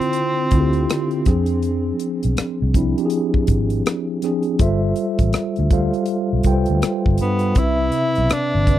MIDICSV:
0, 0, Header, 1, 6, 480
1, 0, Start_track
1, 0, Tempo, 740741
1, 1059, Time_signature, 4, 2, 24, 8
1, 5695, End_track
2, 0, Start_track
2, 0, Title_t, "Tine electric piano"
2, 0, Program_c, 0, 4
2, 0, Control_c, 0, 64, 127
2, 0, Note_on_c, 0, 50, 67
2, 0, Note_on_c, 0, 60, 57
2, 0, Note_on_c, 0, 64, 58
2, 0, Note_on_c, 0, 65, 75
2, 245, Note_off_c, 0, 50, 0
2, 246, Note_off_c, 0, 60, 0
2, 249, Note_off_c, 0, 64, 0
2, 251, Note_off_c, 0, 65, 0
2, 336, Note_on_c, 0, 50, 73
2, 339, Note_on_c, 0, 60, 64
2, 344, Note_on_c, 0, 64, 67
2, 349, Note_on_c, 0, 65, 64
2, 391, Note_on_c, 0, 67, 71
2, 395, Note_off_c, 0, 65, 0
2, 816, Note_off_c, 0, 60, 0
2, 817, Note_off_c, 0, 50, 0
2, 817, Note_on_c, 0, 53, 70
2, 821, Note_off_c, 0, 64, 0
2, 823, Note_on_c, 0, 60, 69
2, 825, Note_on_c, 0, 62, 63
2, 827, Control_c, 0, 64, 0
2, 831, Note_on_c, 0, 68, 77
2, 845, Note_off_c, 0, 67, 0
2, 924, Control_c, 0, 64, 127
2, 1596, Note_off_c, 0, 53, 0
2, 1599, Note_off_c, 0, 60, 0
2, 1600, Note_off_c, 0, 62, 0
2, 1603, Note_off_c, 0, 68, 0
2, 1779, Note_on_c, 0, 53, 72
2, 1784, Note_on_c, 0, 60, 67
2, 1788, Note_on_c, 0, 62, 66
2, 1792, Note_on_c, 0, 64, 87
2, 1889, Note_off_c, 0, 53, 0
2, 1891, Note_off_c, 0, 60, 0
2, 1894, Note_off_c, 0, 62, 0
2, 1895, Note_off_c, 0, 64, 0
2, 1926, Note_on_c, 0, 53, 65
2, 1928, Note_on_c, 0, 60, 59
2, 1931, Note_on_c, 0, 62, 60
2, 1936, Note_on_c, 0, 67, 54
2, 1963, Note_off_c, 0, 67, 0
2, 1978, Note_on_c, 0, 68, 72
2, 2542, Note_off_c, 0, 53, 0
2, 2543, Note_off_c, 0, 60, 0
2, 2544, Note_off_c, 0, 62, 0
2, 2568, Note_off_c, 0, 68, 0
2, 2738, Note_on_c, 0, 53, 70
2, 2745, Note_on_c, 0, 60, 66
2, 2747, Note_on_c, 0, 62, 64
2, 2752, Note_on_c, 0, 68, 74
2, 2932, Note_off_c, 0, 53, 0
2, 2936, Note_off_c, 0, 60, 0
2, 2937, Note_off_c, 0, 62, 0
2, 2939, Note_off_c, 0, 68, 0
2, 2974, Note_on_c, 0, 55, 82
2, 2978, Note_on_c, 0, 65, 82
2, 2982, Note_on_c, 0, 69, 82
2, 2986, Note_on_c, 0, 72, 75
2, 2988, Control_c, 0, 64, 0
2, 2990, Note_on_c, 0, 76, 93
2, 3099, Control_c, 0, 64, 127
2, 3534, Note_off_c, 0, 55, 0
2, 3536, Note_off_c, 0, 65, 0
2, 3538, Note_off_c, 0, 69, 0
2, 3540, Note_off_c, 0, 72, 0
2, 3542, Note_off_c, 0, 76, 0
2, 3701, Note_on_c, 0, 55, 74
2, 3703, Note_on_c, 0, 65, 69
2, 3708, Note_on_c, 0, 69, 67
2, 3709, Note_on_c, 0, 72, 66
2, 3713, Note_on_c, 0, 77, 88
2, 4088, Note_off_c, 0, 55, 0
2, 4089, Note_off_c, 0, 65, 0
2, 4091, Note_off_c, 0, 69, 0
2, 4092, Note_off_c, 0, 72, 0
2, 4093, Note_off_c, 0, 77, 0
2, 4182, Note_on_c, 0, 55, 67
2, 4184, Note_on_c, 0, 65, 62
2, 4185, Note_on_c, 0, 69, 60
2, 4190, Note_on_c, 0, 71, 45
2, 4193, Note_on_c, 0, 79, 81
2, 4231, Note_on_c, 0, 72, 61
2, 4235, Note_off_c, 0, 71, 0
2, 4738, Note_off_c, 0, 55, 0
2, 4739, Note_off_c, 0, 65, 0
2, 4740, Note_off_c, 0, 69, 0
2, 4743, Note_off_c, 0, 79, 0
2, 4762, Note_off_c, 0, 72, 0
2, 4903, Note_on_c, 0, 48, 79
2, 4908, Control_c, 0, 64, 0
2, 4908, Note_on_c, 0, 60, 75
2, 4912, Note_on_c, 0, 71, 66
2, 4916, Note_on_c, 0, 76, 76
2, 5026, Control_c, 0, 64, 127
2, 5458, Note_off_c, 0, 48, 0
2, 5461, Note_off_c, 0, 60, 0
2, 5463, Note_off_c, 0, 71, 0
2, 5465, Note_off_c, 0, 76, 0
2, 5622, Note_on_c, 0, 48, 64
2, 5626, Note_on_c, 0, 60, 57
2, 5631, Note_on_c, 0, 71, 57
2, 5636, Note_on_c, 0, 74, 70
2, 5695, Note_off_c, 0, 48, 0
2, 5695, Note_off_c, 0, 60, 0
2, 5695, Note_off_c, 0, 71, 0
2, 5695, Note_off_c, 0, 74, 0
2, 5695, End_track
3, 0, Start_track
3, 0, Title_t, "Tenor saxophone"
3, 0, Program_c, 1, 66
3, 0, Note_on_c, 1, 60, 75
3, 797, Note_off_c, 1, 60, 0
3, 4673, Note_on_c, 1, 59, 67
3, 4915, Note_on_c, 1, 64, 86
3, 4924, Note_off_c, 1, 59, 0
3, 5393, Note_on_c, 1, 62, 78
3, 5403, Note_off_c, 1, 64, 0
3, 5695, Note_off_c, 1, 62, 0
3, 5695, End_track
4, 0, Start_track
4, 0, Title_t, "Fingered electric bass"
4, 0, Program_c, 2, 33
4, 341, Note_on_c, 2, 38, 77
4, 547, Note_off_c, 2, 38, 0
4, 824, Note_on_c, 2, 41, 71
4, 1236, Note_off_c, 2, 41, 0
4, 1456, Note_on_c, 2, 35, 74
4, 1532, Note_off_c, 2, 35, 0
4, 1698, Note_on_c, 2, 36, 82
4, 1899, Note_off_c, 2, 36, 0
4, 2262, Note_on_c, 2, 32, 77
4, 2468, Note_off_c, 2, 32, 0
4, 2984, Note_on_c, 2, 31, 85
4, 3189, Note_off_c, 2, 31, 0
4, 3369, Note_on_c, 2, 33, 61
4, 3449, Note_off_c, 2, 33, 0
4, 3621, Note_on_c, 2, 38, 76
4, 3821, Note_off_c, 2, 38, 0
4, 4100, Note_on_c, 2, 35, 64
4, 4175, Note_off_c, 2, 35, 0
4, 4182, Note_on_c, 2, 36, 71
4, 4306, Note_off_c, 2, 36, 0
4, 4339, Note_on_c, 2, 38, 67
4, 4414, Note_off_c, 2, 38, 0
4, 4581, Note_on_c, 2, 31, 70
4, 4656, Note_off_c, 2, 31, 0
4, 4673, Note_on_c, 2, 43, 76
4, 4874, Note_off_c, 2, 43, 0
4, 4904, Note_on_c, 2, 36, 76
4, 5109, Note_off_c, 2, 36, 0
4, 5300, Note_on_c, 2, 35, 70
4, 5375, Note_off_c, 2, 35, 0
4, 5539, Note_on_c, 2, 31, 77
4, 5695, Note_off_c, 2, 31, 0
4, 5695, End_track
5, 0, Start_track
5, 0, Title_t, "Muted fingered electric bass strokes"
5, 1555, Note_on_c, 9, 29, 39
5, 1620, Note_off_c, 9, 29, 0
5, 4432, Note_on_c, 9, 29, 34
5, 4497, Note_off_c, 9, 29, 0
5, 5392, Note_on_c, 9, 29, 39
5, 5457, Note_off_c, 9, 29, 0
5, 5695, End_track
6, 0, Start_track
6, 0, Title_t, "Drums"
6, 9, Note_on_c, 9, 42, 37
6, 74, Note_off_c, 9, 42, 0
6, 84, Note_on_c, 9, 42, 66
6, 149, Note_off_c, 9, 42, 0
6, 329, Note_on_c, 9, 42, 54
6, 334, Note_on_c, 9, 36, 72
6, 394, Note_off_c, 9, 42, 0
6, 399, Note_off_c, 9, 36, 0
6, 474, Note_on_c, 9, 42, 35
6, 538, Note_off_c, 9, 42, 0
6, 580, Note_on_c, 9, 42, 72
6, 587, Note_on_c, 9, 37, 96
6, 645, Note_off_c, 9, 42, 0
6, 652, Note_off_c, 9, 37, 0
6, 718, Note_on_c, 9, 42, 28
6, 783, Note_off_c, 9, 42, 0
6, 813, Note_on_c, 9, 42, 59
6, 818, Note_on_c, 9, 36, 83
6, 826, Note_on_c, 9, 37, 28
6, 878, Note_off_c, 9, 42, 0
6, 883, Note_off_c, 9, 36, 0
6, 891, Note_off_c, 9, 37, 0
6, 947, Note_on_c, 9, 42, 44
6, 1012, Note_off_c, 9, 42, 0
6, 1053, Note_on_c, 9, 42, 57
6, 1118, Note_off_c, 9, 42, 0
6, 1293, Note_on_c, 9, 42, 57
6, 1358, Note_off_c, 9, 42, 0
6, 1444, Note_on_c, 9, 42, 40
6, 1508, Note_off_c, 9, 42, 0
6, 1535, Note_on_c, 9, 42, 58
6, 1543, Note_on_c, 9, 37, 94
6, 1600, Note_off_c, 9, 42, 0
6, 1608, Note_off_c, 9, 37, 0
6, 1777, Note_on_c, 9, 36, 73
6, 1780, Note_on_c, 9, 42, 47
6, 1842, Note_off_c, 9, 36, 0
6, 1845, Note_off_c, 9, 42, 0
6, 1930, Note_on_c, 9, 42, 38
6, 1995, Note_off_c, 9, 42, 0
6, 2008, Note_on_c, 9, 42, 73
6, 2072, Note_off_c, 9, 42, 0
6, 2164, Note_on_c, 9, 36, 60
6, 2229, Note_off_c, 9, 36, 0
6, 2250, Note_on_c, 9, 42, 60
6, 2255, Note_on_c, 9, 36, 72
6, 2314, Note_off_c, 9, 42, 0
6, 2320, Note_off_c, 9, 36, 0
6, 2398, Note_on_c, 9, 42, 40
6, 2462, Note_off_c, 9, 42, 0
6, 2501, Note_on_c, 9, 42, 71
6, 2507, Note_on_c, 9, 37, 105
6, 2565, Note_off_c, 9, 42, 0
6, 2572, Note_off_c, 9, 37, 0
6, 2735, Note_on_c, 9, 42, 62
6, 2749, Note_on_c, 9, 37, 26
6, 2800, Note_off_c, 9, 42, 0
6, 2813, Note_off_c, 9, 37, 0
6, 2869, Note_on_c, 9, 42, 40
6, 2933, Note_off_c, 9, 42, 0
6, 2975, Note_on_c, 9, 42, 65
6, 2977, Note_on_c, 9, 36, 98
6, 3040, Note_off_c, 9, 42, 0
6, 3042, Note_off_c, 9, 36, 0
6, 3212, Note_on_c, 9, 42, 53
6, 3277, Note_off_c, 9, 42, 0
6, 3361, Note_on_c, 9, 42, 40
6, 3362, Note_on_c, 9, 36, 67
6, 3425, Note_off_c, 9, 42, 0
6, 3427, Note_off_c, 9, 36, 0
6, 3452, Note_on_c, 9, 42, 57
6, 3460, Note_on_c, 9, 37, 94
6, 3517, Note_off_c, 9, 42, 0
6, 3525, Note_off_c, 9, 37, 0
6, 3602, Note_on_c, 9, 42, 30
6, 3667, Note_off_c, 9, 42, 0
6, 3697, Note_on_c, 9, 36, 77
6, 3697, Note_on_c, 9, 42, 46
6, 3762, Note_off_c, 9, 36, 0
6, 3762, Note_off_c, 9, 42, 0
6, 3846, Note_on_c, 9, 42, 34
6, 3911, Note_off_c, 9, 42, 0
6, 3924, Note_on_c, 9, 42, 66
6, 3989, Note_off_c, 9, 42, 0
6, 4169, Note_on_c, 9, 42, 55
6, 4176, Note_on_c, 9, 36, 70
6, 4234, Note_off_c, 9, 42, 0
6, 4241, Note_off_c, 9, 36, 0
6, 4314, Note_on_c, 9, 42, 37
6, 4379, Note_off_c, 9, 42, 0
6, 4419, Note_on_c, 9, 42, 77
6, 4426, Note_on_c, 9, 37, 92
6, 4484, Note_off_c, 9, 42, 0
6, 4491, Note_off_c, 9, 37, 0
6, 4573, Note_on_c, 9, 36, 77
6, 4638, Note_off_c, 9, 36, 0
6, 4650, Note_on_c, 9, 42, 61
6, 4715, Note_off_c, 9, 42, 0
6, 4789, Note_on_c, 9, 42, 41
6, 4853, Note_off_c, 9, 42, 0
6, 4892, Note_on_c, 9, 42, 66
6, 4897, Note_on_c, 9, 36, 93
6, 4957, Note_off_c, 9, 42, 0
6, 4962, Note_off_c, 9, 36, 0
6, 5131, Note_on_c, 9, 42, 61
6, 5196, Note_off_c, 9, 42, 0
6, 5283, Note_on_c, 9, 42, 40
6, 5348, Note_off_c, 9, 42, 0
6, 5375, Note_on_c, 9, 42, 55
6, 5383, Note_on_c, 9, 37, 95
6, 5440, Note_off_c, 9, 42, 0
6, 5448, Note_off_c, 9, 37, 0
6, 5618, Note_on_c, 9, 36, 73
6, 5618, Note_on_c, 9, 42, 46
6, 5683, Note_off_c, 9, 36, 0
6, 5683, Note_off_c, 9, 42, 0
6, 5695, End_track
0, 0, End_of_file